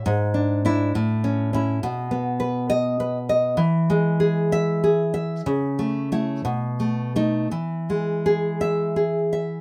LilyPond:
\new Staff \with { instrumentName = "Nylon-string guitar" } { \time 6/8 \key e \major \tempo 4. = 64 << { r4 e'8 r4 e'8 | r4. dis''4 r8 | r4. e''4 r8 | r4 e'8 r4 dis'8 |
r4. e''4 r8 | } \\ { gis,8 d'8 d'8 a,8 cis'8 cis'8 | b,8 b8 b'4 b'8 dis''8 | e8 gis8 gis'4 gis'8 e''8 | cis8 a8 a8 b,8 a8 a8 |
e8 gis8 gis'4 gis'8 e''8 | } >> }